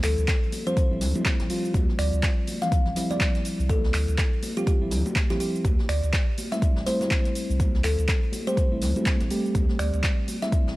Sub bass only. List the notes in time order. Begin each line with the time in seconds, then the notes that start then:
0.04 D2
0.18 D2
0.91 A1
1.01 D2
1.40 A1
1.74 D2
1.99 D2
2.13 D2
2.86 A1
3.59 C2
3.94 D2
4.08 D2
4.81 A1
4.91 D2
5.30 A1
5.65 D2
5.89 D2
6.03 D2
6.77 A1
7.50 C2
7.84 D2
7.98 D2
8.72 A1
8.82 D2
9.20 A1
9.55 D2
9.79 D2
9.94 D2
10.67 A1